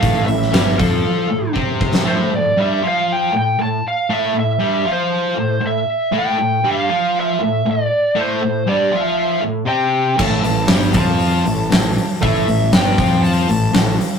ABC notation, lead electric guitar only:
X:1
M:4/4
L:1/8
Q:1/4=118
K:Am
V:1 name="Lead electric guitar"
f e2 A3 z2 | c d e f g g a f | e e2 c3 e2 | g2 f2 e2 d2 |
c2 d e2 z g2 | a2 z a4- a | e2 g2 a3 z |]